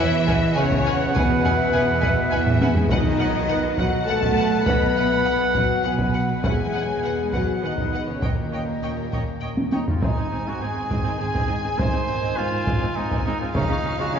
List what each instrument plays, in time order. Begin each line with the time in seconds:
Already playing: trombone section B2 B3, cello section E3, french horn section E4, violin section E5, trumpet F#5
0.00 double bass section E2, flute section C#5
0.26 viola section B4 F#5, flute section D#5, violin section G#5, taiko
0.55 double bass section E2, cello section C#3, french horn section C#4, viola section B4 F#5, violin section C#5 G#5, flute section E5
0.72 taiko
0.86 viola section B4 F#5, flute section F#5, violin section G#5
1.14 double bass section E2, cello section B2, french horn section B3, viola section B4 F#5, violin section B4 G#5, flute section G#5, taiko
1.44 viola section B4 F#5, flute section E5, violin section G#5, taiko low
1.73 double bass section E2, viola section B4 F#5, violin section G#5, taiko low
2.00 viola section B4 F#5, violin section G#5, taiko
2.31 double bass section E2, cello section E3, french horn section E4, viola section B4 F#5, violin section E5 G#5
2.46 taiko low-mid
2.61 viola section B4 F#5, violin section G#5, taiko high
2.74 cello section G#3, french horn section G#4, violin section G#5, taiko low
2.89 double bass section B1, trombone section B2 B3, timpani B2, cello section D#3, french horn section D#4, viola section B4 F#5, violin section D#5 F#5, flute section D#5, trumpet F#5, taiko
3.19 viola section B4 F#5, flute section C#5, violin section F#5
3.48 double bass section B1, viola section B4 F#5, flute section B4, violin section F#5
3.76 cello section F#3, viola section B4 F#5, flute section D#5, violin section F#5, taiko
3.80 french horn section F#4
4.05 double bass section B1, cello section A3, french horn section A4, viola section B4 F#5, violin section F#5 A5, flute section F#5
4.22 taiko
4.36 viola section B4 F#5, violin section F#5
4.63 double bass section B1, cello section B3, french horn section B4, viola section B4 F#5, violin section F#5 B5, taiko
4.68 flute section D#5
4.96 viola section B4 F#5, flute section E5, violin section F#5
5.24 double bass section B1, viola section B4 F#5, violin section F#5, flute section F#5
5.52 cello section F#3, french horn section F#4, viola section B4 F#5, violin section F#5, taiko
5.83 double bass section B1, cello section B2, french horn section B3, viola section B4 F#5, violin section B4 F#5, flute section G#5
5.99 taiko
6.13 viola section B4 F#5, violin section F#5, flute section F#5
6.43 double bass section E2, trombone section B2 B3, cello section G#3, french horn section G#4, viola section B4 F#5, flute section E5, violin section F#5 G#5, trumpet F#5, taiko
6.73 viola section B4 F#5, flute section C#5, violin section F#5
7.03 double bass section E2, viola section B4 F#5, flute section B4, violin section F#5
7.32 cello section F#3, french horn section F#4, viola section B4 F#5, flute section C#5, violin section F#5, taiko
7.62 double bass section E2, cello section D#3, french horn section D#4, viola section B4 F#5, flute section B4, violin section D#5 F#5
7.78 taiko
7.92 viola section B4 F#5, violin section F#5
8.07 cello section C#3, french horn section C#4, violin section C#5
8.22 double bass section D#2, cello section A#2, trombone section A#2 C#4, violin section A#4 G5, viola section C#5 D#5, flute section D#5, trumpet G5, taiko
8.26 french horn section A#3
8.52 viola section C#5 D#5, violin section G5
8.82 double bass section D#2, viola section C#5 D#5, violin section G5
9.12 viola section C#5 D#5, violin section G5, taiko
9.40 double bass section D#2, viola section C#5 D#5, violin section G5
9.57 taiko high
9.72 trumpet D#4, viola section C#5 D#5, violin section G5, taiko high
9.88 trumpet F4, taiko low
10.00 double bass section G#1, cello section G#2, trombone section D#3 G#3, violin section G#3 G#5, viola section C4, trumpet D#4, taiko
10.04 french horn section C4 D#4
10.16 cello section G#2, viola section C4, violin section D#4
10.31 double bass section G#1, cello section G#2, viola section C4
10.35 violin section C4
10.45 cello section G#2, violin section G#3, viola section C4, trumpet F#4
10.60 double bass section G#1, cello section G#2, viola section C4, violin section D#4, trumpet G#4
10.75 cello section G#2, viola section C4
10.79 violin section C4
10.89 double bass section G#1, cello section G#2, violin section G#3, viola section C4, taiko
11.04 cello section G#2, viola section C4, violin section D#4
11.18 double bass section G#1, cello section G#2, viola section C4, violin section C4, trumpet G#4
11.33 cello section G#2, violin section G#3, viola section C4, taiko
11.47 double bass section G#1, cello section G#2, viola section C4, violin section D#4
11.63 cello section G#2, viola section C4, violin section C4, trumpet G#4
11.77 double bass section G#1, cello section G#2, violin section G#3, viola section C4, trumpet C5, taiko
11.93 cello section G#2, viola section C4, violin section D#4
12.08 double bass section G#1, cello section G#2, violin section C4, viola section C4
12.21 cello section G#2, violin section G#3, viola section C4
12.36 double bass section G#1, cello section G#2, viola section C4, violin section D#4, trumpet F4
12.50 cello section G#2, violin section C4, viola section C4
12.66 double bass section G#1, cello section G#2, violin section G#3, viola section C4, taiko
12.78 cello section G#2, viola section C4, violin section D#4
12.95 double bass section G#1, cello section G#2, violin section C4, viola section C4, trumpet D#4
13.09 cello section G#2, violin section G#3, viola section C4, taiko
13.23 double bass section G#1, cello section G#2, viola section C4, violin section D#4, trumpet D#4
13.40 cello section G#2, violin section C4, viola section C4, trumpet F4
13.53 double bass section C#2, cello section C#3, trombone section D#3 G#3, violin section G#3 F5, viola section C#4, french horn section C#4 F4, trumpet D#4, taiko
13.67 cello section C#3, violin section D#4
13.71 viola section C#4
13.82 double bass section C#2, cello section C#3, violin section C#4, viola section C#4
13.96 cello section C#3, violin section G#3, viola section C#4, trumpet F#4
14.10 double bass section C#2, cello section C#3, violin section D#4
14.14 viola section C#4, trumpet G#4